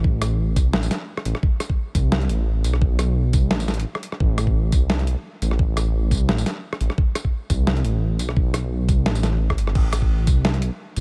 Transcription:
Already playing: detuned saw bass A1
0.04 kick
0.22 cross-stick, closed hi-hat, tambourine
0.56 detuned saw bass C2, kick, closed hi-hat, tambourine
0.73 detuned saw bass A1, snare
0.83 closed hi-hat, tambourine
0.91 snare, closed hi-hat, tambourine
1.17 cross-stick
1.25 detuned saw bass A1, closed hi-hat
1.35 cross-stick
1.43 kick
1.60 cross-stick, closed hi-hat, tambourine
1.70 kick
1.95 detuned saw bass C2, kick, closed hi-hat, tambourine
2.12 snare
2.21 closed hi-hat
2.29 detuned saw bass A1, closed hi-hat
2.64 detuned saw bass B1, closed hi-hat, tambourine
2.74 cross-stick
2.82 kick
2.99 cross-stick, closed hi-hat, tambourine
3.33 detuned saw bass C2, kick, closed hi-hat, tambourine
3.51 detuned saw bass A1, snare
3.60 closed hi-hat, tambourine
3.68 snare, closed hi-hat, tambourine
3.74 closed hi-hat
3.80 closed hi-hat
3.95 cross-stick
4.03 closed hi-hat
4.12 cross-stick
4.20 detuned saw bass A1, kick
4.38 cross-stick, closed hi-hat, tambourine
4.47 kick
4.72 detuned saw bass C2, kick, closed hi-hat, tambourine
4.90 snare
4.99 closed hi-hat
5.07 detuned saw bass B1, closed hi-hat
5.42 detuned saw bass A1, closed hi-hat, tambourine
5.51 cross-stick
5.59 kick
5.77 cross-stick, closed hi-hat, tambourine
6.11 detuned saw bass C2, kick, closed hi-hat, tambourine
6.15 tambourine
6.17 tambourine
6.28 detuned saw bass A1, snare
6.38 closed hi-hat, tambourine
6.46 snare, closed hi-hat, tambourine
6.73 cross-stick
6.81 detuned saw bass A1, closed hi-hat
6.90 cross-stick
6.98 kick
7.15 cross-stick, closed hi-hat, tambourine
7.25 kick
7.50 detuned saw bass C2, kick, closed hi-hat, tambourine
7.67 snare
7.77 closed hi-hat
7.84 detuned saw bass A1, closed hi-hat
8.19 detuned saw bass B1, closed hi-hat, tambourine
8.29 cross-stick
8.37 kick
8.54 cross-stick, closed hi-hat, tambourine
8.89 detuned saw bass C2, kick, closed hi-hat, tambourine
9.06 detuned saw bass A1, snare
9.15 closed hi-hat, tambourine
9.23 snare, closed hi-hat, tambourine
9.50 kick, cross-stick
9.58 detuned saw bass G1, closed hi-hat
9.67 cross-stick
9.75 detuned saw bass A1, kick, crash
9.93 cross-stick, closed hi-hat, tambourine
10.02 kick
10.27 detuned saw bass C2, kick, closed hi-hat, tambourine
10.45 snare
10.54 closed hi-hat
10.62 detuned saw bass B1, closed hi-hat
10.96 detuned saw bass A1, closed hi-hat, tambourine

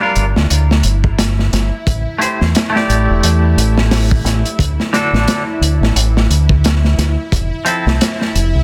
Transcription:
Already playing: synth drone E4
0.00 clean electric guitar G3 D4 F4 A#4
0.15 fingered electric bass G1, closed hi-hat
0.36 fingered electric bass D2, snare
0.50 fingered electric bass D2, closed hi-hat
0.71 snare
0.83 fingered electric bass G1, closed hi-hat
1.04 kick
1.19 snare, closed hi-hat
1.39 snare
1.52 fingered electric bass G1, snare, closed hi-hat
1.87 fingered electric bass A1, kick, closed hi-hat
2.18 clean electric guitar A3 E4 G4 C5, closed hi-hat
2.41 fingered electric bass E2, snare
2.55 snare, closed hi-hat
2.70 clean electric guitar A3 E4
2.75 clean electric guitar G4 D5, snare
2.89 fingered electric bass A1, closed hi-hat
3.09 fingered electric bass E1
3.23 fingered electric bass E2, closed hi-hat
3.57 fingered electric bass A1, closed hi-hat
3.78 snare
3.91 snare, open hi-hat
4.11 kick
4.24 fingered electric bass A1, snare, closed hi-hat
4.45 closed hi-hat
4.59 fingered electric bass D2, kick, closed hi-hat
4.80 snare
4.93 clean electric guitar D3 D4 F#4 A4, snare, closed hi-hat
5.13 fingered electric bass A1, snare
5.28 snare, closed hi-hat
5.61 fingered electric bass D2, closed hi-hat
5.81 fingered electric bass A1, snare
5.95 fingered electric bass A1, closed hi-hat
6.17 snare
6.30 fingered electric bass D2, closed hi-hat
6.49 kick
6.64 snare, closed hi-hat
6.84 snare
6.98 fingered electric bass D2, snare, closed hi-hat
7.32 fingered electric bass F1, kick, closed hi-hat
7.65 clean electric guitar F3 C4 E4 A4, closed hi-hat
7.86 fingered electric bass C2, snare
8.01 snare, closed hi-hat
8.21 snare
8.35 fingered electric bass F1, closed hi-hat
8.55 fingered electric bass C2

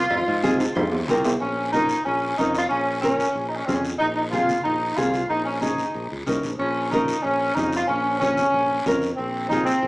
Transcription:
Already playing: saxophone section F4
0.11 fingered electric bass F2, cowbell, low conga, long guiro
0.28 fingered electric bass G#2
0.43 nylon-string guitar C4 F4 G#4, high conga, short guiro
0.60 nylon-string guitar F5, high timbale, short guiro
0.75 fingered electric bass F2, nylon-string guitar C5, cowbell, low conga, high timbale, long guiro
0.92 low timbale
1.08 fingered electric bass C2, nylon-string guitar C4 F4 A#4 C5, high conga, short guiro
1.25 low timbale, short guiro
1.40 fingered electric bass A#1, saxophone section C#4, long guiro
1.72 nylon-string guitar C#4 F4 A#4, saxophone section D#4, high conga, short guiro
1.89 short guiro
2.05 fingered electric bass A#1, saxophone section C#4, long guiro
2.37 fingered electric bass F2, nylon-string guitar C#4 F4 A#4, saxophone section D#4, high conga, short guiro
2.55 saxophone section F4, short guiro
2.69 fingered electric bass A#1, saxophone section C#4, long guiro
3.01 saxophone section C#4, nylon-string guitar C#4 F4 A#4, high conga, short guiro
3.20 short guiro
3.35 fingered electric bass A#1, long guiro
3.48 saxophone section D#4
3.56 saxophone section C#4
3.66 fingered electric bass F2, saxophone section C4, nylon-string guitar C#4 F4 G#4, high conga, short guiro
3.75 saxophone section C#4
3.85 short guiro
3.99 fingered electric bass A#1, saxophone section D#4, long guiro
4.16 saxophone section D#4
4.31 nylon-string guitar C4 F4 G#4, saxophone section F4, high conga, short guiro
4.49 high conga, short guiro
4.63 fingered electric bass A#1, saxophone section D#4, long guiro
4.95 fingered electric bass C2, nylon-string guitar C4 F4 G#4, saxophone section F4, high conga, short guiro
5.14 short guiro
5.29 fingered electric bass A#1, saxophone section D#4, long guiro
5.45 saxophone section C#4
5.61 nylon-string guitar C#4 D#4 G#4, saxophone section D#4, high conga, short guiro
5.78 short guiro
5.95 fingered electric bass A#1, long guiro
6.12 fingered electric bass C#2
6.26 fingered electric bass C2, nylon-string guitar C#4 D#4 A#4, high conga, short guiro
6.43 fingered electric bass A#1, short guiro
6.59 fingered electric bass A#1, saxophone section C#4, long guiro
6.92 nylon-string guitar C#4 F4 A#4, saxophone section D#4, high conga, short guiro
7.08 short guiro
7.23 fingered electric bass A#1, saxophone section C#4, long guiro
7.55 fingered electric bass F2, nylon-string guitar C#4 F4 G#4, saxophone section D#4, high conga, short guiro
7.73 short guiro
7.77 saxophone section F4
7.88 fingered electric bass A#1, saxophone section C#4, long guiro
8.19 saxophone section C#4, nylon-string guitar C#4 F4 C#5, high conga, short guiro
8.37 high conga, short guiro
8.54 fingered electric bass A#1, long guiro
8.86 fingered electric bass F2, nylon-string guitar C#4 F4 A#4, high conga, short guiro
9.02 short guiro
9.17 fingered electric bass A#1, saxophone section C4, long guiro
9.48 nylon-string guitar C4 F4 G#4, saxophone section D#4, high conga, short guiro
9.65 saxophone section C4, short guiro
9.82 fingered electric bass A#1, long guiro

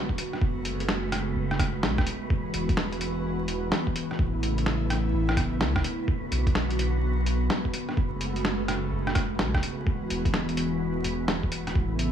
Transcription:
Already playing: analog synth pad D3 F#3 B3 F#4, synth texture B3 B4
0.09 kick
0.18 closed hi-hat
0.33 cross-stick
0.42 sub bass F#1, analog synth pad C#3 G#3 A3, kick
0.65 closed hi-hat
0.80 closed hi-hat
0.88 snare
1.12 cross-stick, closed hi-hat
1.36 sub bass F#1
1.51 cross-stick
1.60 kick, cross-stick, closed hi-hat
1.83 sub bass B1, snare
1.98 kick, cross-stick
2.07 closed hi-hat
2.30 analog synth pad E3 B3 F#4, kick
2.54 sub bass E1, closed hi-hat
2.69 kick, closed hi-hat
2.77 snare
2.92 closed hi-hat
3.01 closed hi-hat
3.48 closed hi-hat
3.72 snare
3.87 kick
3.96 closed hi-hat
4.11 cross-stick
4.19 sub bass A1, analog synth pad C#3 A3 E4, kick
4.43 closed hi-hat
4.58 closed hi-hat
4.66 snare
4.90 cross-stick, closed hi-hat
5.13 sub bass A1
5.29 cross-stick
5.37 kick, cross-stick, closed hi-hat
5.61 sub bass C#2, snare
5.76 kick, cross-stick
5.84 closed hi-hat
6.08 analog synth pad D3 F#3 F#4, kick
6.31 sub bass B1, closed hi-hat
6.47 kick, closed hi-hat
6.55 snare
6.71 closed hi-hat
6.79 closed hi-hat
7.26 closed hi-hat
7.50 snare
7.65 kick
7.74 closed hi-hat
7.89 cross-stick
7.97 sub bass F#1, analog synth pad C#3 G#3 A3 F#4, kick
8.21 closed hi-hat
8.36 closed hi-hat
8.45 snare
8.68 cross-stick, closed hi-hat
8.92 sub bass F#1
9.07 cross-stick
9.15 kick, cross-stick, closed hi-hat
9.39 sub bass B1, snare
9.54 kick, cross-stick
9.63 closed hi-hat
9.86 analog synth pad E3 B3, kick
10.10 sub bass E1, closed hi-hat
10.25 kick, closed hi-hat
10.34 snare
10.49 closed hi-hat
10.57 closed hi-hat
11.04 sub bass E1, closed hi-hat
11.28 snare
11.43 kick
11.52 closed hi-hat
11.67 cross-stick, closed hi-hat
11.75 sub bass A1, analog synth pad C#3 A3 E4, kick
11.99 closed hi-hat

